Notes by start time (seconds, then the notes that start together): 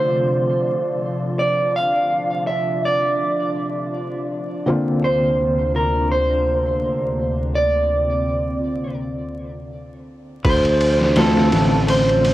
Already playing: C3 D3 F3 A3 C4 D4 F4 C5 D5
1.39 D5
1.76 F5
2.47 E5
2.85 D5
4.66 D2 C3 D3 A#3 C4 F4
5.04 C5
5.76 A#4
6.11 C5
7.54 C4 D5
10.43 D2 C3 F3 D4 C5, kick, ride
10.65 ride
10.81 ride
11.02 snare
11.16 D3 A3 C4 F4 A4, snare, ride
11.37 snare
11.52 A1, snare, ride
11.88 C5, ride
12.09 ride
12.25 ride